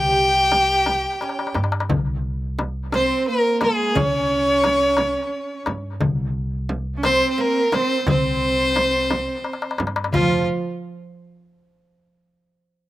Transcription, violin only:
0.00 1.55 G5 loud
2.94 3.25 C5 medium
3.28 3.59 A#4 medium
3.63 3.98 G#4 medium
3.97 5.68 C#5 loud
7.05 7.31 C5 loud
7.31 7.42 C5 medium
7.41 7.76 A#4 loud
7.74 8.08 C5 loud
8.10 9.76 C5 loud
10.13 10.45 F4 medium

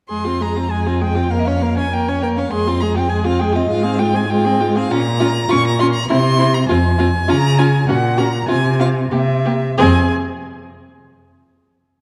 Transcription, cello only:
0.12 2.49 F2 soft
2.52 3.68 F2 medium
3.70 4.89 G#2 medium
4.91 5.44 A#2 medium
5.50 6.03 A#2 medium
6.09 6.62 C3 medium
6.69 7.22 F2 medium
7.30 7.82 C#3 medium
7.88 8.42 A#2 medium
8.49 9.05 C3 medium
9.12 9.70 C3 medium
9.79 10.14 F2 medium

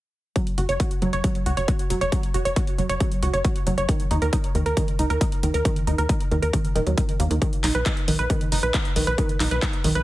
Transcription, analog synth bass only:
0.58 0.67 F#1 medium
0.69 0.78 F#1 medium
1.02 1.11 F#1 medium
1.13 1.22 F#1 medium
1.46 1.55 C#2 medium
1.57 1.66 F#1 medium
1.90 1.99 F#1 medium
2.01 2.10 F#1 medium
2.34 2.43 F#1 medium
2.45 2.54 F#1 medium
2.78 2.87 F#1 medium
2.90 2.98 F#1 medium
3.23 3.31 C#2 medium
3.34 3.42 F#1 medium
3.67 3.75 F#1 medium
3.78 3.86 F#1 medium
4.11 4.20 D#2 medium
4.22 4.31 D#2 medium
4.55 4.64 D#2 medium
4.66 4.75 D#2 medium
4.99 5.08 C#2 medium
5.10 5.19 D#2 medium
5.43 5.52 D#2 medium
5.54 5.63 D#2 medium
5.87 5.96 D#2 medium
5.98 6.07 D#2 medium
6.31 6.40 D#2 medium
6.42 6.51 D#2 medium
6.76 6.84 D#1 medium
6.87 6.95 D#2 medium
7.20 7.28 D#2 medium
7.31 7.39 D#2 medium
7.64 7.72 B1 medium
7.75 7.84 B1 medium
8.08 8.17 B1 medium
8.19 8.28 B1 medium
8.52 8.61 F#1 medium
8.63 8.72 B1 medium
8.96 9.05 B1 medium
9.07 9.16 B1 medium
9.40 9.49 B1 medium
9.51 9.60 B1 medium
9.84 9.93 B1 medium
9.95 10.03 B1 medium

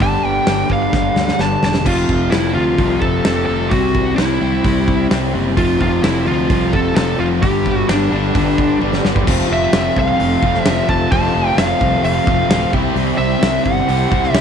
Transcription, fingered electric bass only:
0.01 0.16 G1 loud
0.23 0.38 G1 medium
0.47 0.62 G1 medium
0.69 0.85 G1 medium
0.93 1.08 G1 medium
1.16 1.31 D2 medium
1.39 1.55 G1 medium
1.62 1.86 E1 medium
1.86 2.08 F1 medium
2.09 2.31 F1 medium
2.33 2.54 F1 medium
2.56 2.78 D2 medium
2.78 3.00 C2 medium
3.02 3.24 F1 medium
3.25 3.47 F1 medium
3.49 3.70 F1 medium
3.72 4.15 C2 loud
4.19 4.40 C2 medium
4.42 4.63 C2 medium
4.65 5.08 C2 medium
5.11 5.33 C2 medium
5.33 5.57 F#1 medium
5.57 5.79 F1 loud
5.81 6.02 F1 loud
6.04 6.26 F1 medium
6.27 6.48 D2 medium
6.50 6.72 C2 medium
6.74 6.95 F1 medium
6.96 7.18 F1 medium
7.19 7.43 F1 medium
7.43 7.86 G1 medium
7.89 8.10 G1 medium
8.12 8.34 G1 medium
8.35 8.78 G1 medium
8.81 9.03 G1 medium
9.04 9.26 G1 medium
9.27 9.43 F1 medium
9.50 9.65 F1 loud
9.73 9.88 F1 medium
9.97 10.12 C2 medium
10.21 10.35 F1 loud
10.43 10.58 F1 medium
10.66 10.81 F1 medium
10.89 11.04 F1 medium
11.12 11.27 F1 loud
11.35 11.50 F1 medium
11.57 11.72 F1 medium
11.81 11.96 C2 medium
12.03 12.18 F1 loud
12.27 12.42 F1 medium
12.49 12.65 D1 medium
12.73 12.88 C2 medium
12.96 13.11 C2 loud
13.18 13.34 C2 loud
13.41 13.57 C2 medium
13.66 13.81 G1 medium
13.89 14.04 C2 medium
14.12 14.27 C2 medium
14.34 14.41 C2 medium

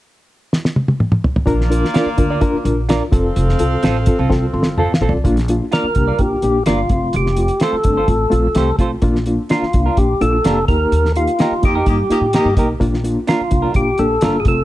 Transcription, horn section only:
1.46 2.86 A#3 medium
1.46 2.86 F4 medium
1.46 2.86 D5 medium
3.12 4.98 C4 medium
3.12 4.98 A4 medium
3.12 4.98 F5 medium
11.64 11.74 A#3 medium
11.64 11.73 G4 medium
11.64 11.73 D#5 medium
11.87 11.97 A#3 medium
11.87 11.97 G4 medium
11.87 11.97 D#5 medium
12.12 12.19 A#3 medium
12.12 12.19 G4 medium
12.12 12.19 D#5 medium
12.35 12.68 A#3 medium
12.35 12.68 G4 medium
12.35 12.68 D#5 medium

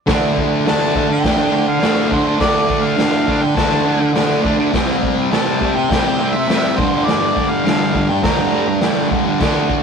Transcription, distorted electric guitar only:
0.07 0.65 D3 medium
0.07 0.67 A3 medium
0.07 0.68 D4 loud
0.65 0.95 D3 medium
0.65 0.96 A3 loud
0.65 0.98 D4 loud
0.95 1.23 D3 medium
0.95 1.10 A3 medium
0.95 1.09 D4 medium
1.10 muted distorted electric guitar stroke medium
1.24 1.51 D3 medium
1.24 1.40 A3 medium
1.24 1.36 D4 medium
1.37 1.55 D4 medium
1.42 1.53 A3 medium
1.52 1.79 D3 medium
1.52 1.67 A3 medium
1.52 1.66 D4 medium
1.68 muted distorted electric guitar stroke medium
1.80 2.08 D3 medium
1.80 2.10 A3 loud
1.80 2.12 D4 loud
2.10 2.37 D3 medium
2.10 2.27 A3 medium
2.10 2.23 D4 medium
2.24 2.41 D4 medium
2.28 2.39 A3 medium
2.38 2.96 D3 loud
2.38 2.98 A3 loud
2.38 3.00 D4 loud
2.97 3.26 D3 loud
2.97 3.28 A3 loud
2.97 3.29 D4 loud
3.27 3.54 D3 medium
3.27 3.42 A3 medium
3.27 3.42 D4 medium
3.43 muted distorted electric guitar stroke medium
3.55 3.85 D3 medium
3.55 3.73 A3 medium
3.55 3.70 D4 medium
3.71 3.87 A3 medium
3.71 3.88 D4 medium
3.86 4.12 D3 medium
3.86 4.00 A3 medium
3.86 4.00 D4 medium
4.01 muted distorted electric guitar stroke medium
4.13 4.42 D3 loud
4.13 4.44 A3 loud
4.13 4.45 D4 loud
4.43 4.71 D3 medium
4.43 4.60 A3 medium
4.43 4.56 D4 medium
4.57 4.72 A3 medium
4.57 4.71 D4 medium
4.72 5.29 C3 medium
4.72 5.32 G3 loud
4.72 5.32 C4 loud
5.31 5.58 C3 medium
5.31 5.61 G3 medium
5.31 5.62 C4 loud
5.60 5.88 C3 medium
5.60 5.75 G3 medium
5.60 5.74 C4 medium
5.76 muted distorted electric guitar stroke medium
5.89 6.18 C3 medium
5.89 6.07 G3 medium
5.89 6.04 C4 medium
6.05 6.20 G3 medium
6.05 6.21 C4 medium
6.19 6.47 C3 medium
6.19 6.34 G3 medium
6.19 6.33 C4 medium
6.34 muted distorted electric guitar stroke soft
6.48 6.75 C3 medium
6.48 6.76 G3 medium
6.48 6.77 C4 loud
6.78 7.06 G2 medium
6.78 6.95 D3 loud
6.78 6.91 G3 loud
6.93 7.08 D3 medium
6.93 7.10 G3 medium
7.07 7.63 G2 medium
7.07 7.65 D3 loud
7.07 7.67 G3 loud
7.64 7.92 G2 loud
7.64 7.94 D3 medium
7.64 7.96 G3 loud
7.94 8.22 G2 medium
7.94 8.09 D3 medium
7.94 8.08 G3 medium
8.09 muted distorted electric guitar stroke soft
8.23 8.50 G2 medium
8.23 8.39 D3 medium
8.23 8.36 G3 medium
8.37 8.52 D3 medium
8.37 8.53 G3 medium
8.51 8.80 G2 medium
8.51 8.67 D3 medium
8.51 8.66 G3 medium
8.67 muted distorted electric guitar stroke medium
8.81 9.09 G2 medium
8.81 9.11 D3 loud
8.81 9.13 G3 medium
9.10 9.38 G2 medium
9.10 9.28 D3 medium
9.10 9.24 G3 medium
9.25 9.39 D3 medium
9.25 9.38 G3 medium
9.40 9.83 D3 medium
9.40 9.83 A3 loud
9.40 9.83 D4 loud

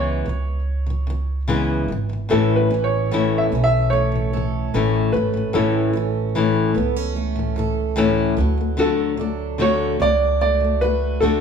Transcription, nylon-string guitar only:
0.00 0.24 C#3 medium
0.00 0.27 E3 medium
0.00 0.27 G#3 medium
0.00 0.27 B3 medium
0.00 0.27 E4 medium
0.26 0.59 C#3 medium
0.26 0.61 E3 medium
0.86 1.06 C#3 soft
0.86 1.09 E3 soft
1.07 1.40 C#3 medium
1.07 1.42 E3 medium
1.48 1.87 C#3 medium
1.48 1.89 E3 medium
1.48 1.89 G#3 medium
1.48 1.90 B3 medium
1.48 1.90 E4 medium
1.88 2.08 C#3 medium
1.88 2.11 E3 medium
2.09 2.28 C#3 soft
2.09 2.29 E3 soft
2.29 2.69 A2 medium
2.29 2.71 E3 medium
2.29 2.71 A3 medium
2.29 2.71 C#4 medium
2.29 2.72 E4 medium
2.70 3.03 A2 medium
2.70 3.05 E3 medium
3.11 3.50 A2 medium
3.11 3.52 E3 medium
3.11 3.53 A3 medium
3.11 3.53 C#4 medium
3.11 3.53 E4 medium
3.52 3.84 A2 soft
3.52 3.86 E3 medium
4.12 4.32 A2 soft
4.12 4.34 E3 soft
4.34 4.66 A2 soft
4.34 4.67 E3 medium
4.74 5.12 A2 medium
4.74 5.15 E3 medium
4.74 5.15 A3 medium
4.74 5.15 C#4 medium
4.74 5.15 E4 medium
5.14 5.32 A2 soft
5.14 5.36 E3 medium
5.34 5.52 A2 soft
5.34 5.53 E3 soft
5.53 5.92 A2 medium
5.53 5.95 E3 medium
5.53 5.95 A3 medium
5.53 5.95 C#4 medium
5.53 5.96 E4 medium
5.93 6.27 A2 medium
5.93 6.28 E3 medium
6.35 6.73 A2 medium
6.35 6.76 E3 medium
6.35 6.77 A3 medium
6.35 6.77 C#4 medium
6.35 6.77 E4 medium
6.74 7.08 A2 medium
6.74 7.09 E3 medium
7.36 7.55 A2 soft
7.36 7.58 E3 soft
7.56 7.89 A2 medium
7.56 7.90 E3 medium
7.96 8.37 A2 medium
7.96 8.36 E3 medium
7.96 8.38 A3 medium
7.96 8.38 C#4 medium
7.96 8.38 E4 medium
8.37 8.56 D3 medium
8.37 8.59 A3 medium
8.58 8.76 D3 soft
8.58 8.76 A3 soft
8.77 9.16 D3 medium
8.77 9.19 A3 medium
8.77 9.19 D4 medium
8.77 9.19 F#4 medium
9.17 9.51 D3 medium
9.17 9.52 A3 medium
9.58 9.98 D3 medium
9.58 10.00 A3 medium
9.58 10.00 D4 medium
9.58 10.01 F#4 medium
10.00 10.32 D3 medium
10.00 10.34 A3 medium
10.60 10.81 D3 soft
10.64 10.83 A3 soft
10.84 11.15 A3 medium
11.21 11.41 D3 medium
11.21 11.41 A3 medium
11.21 11.41 D4 medium
11.21 11.41 F#4 medium

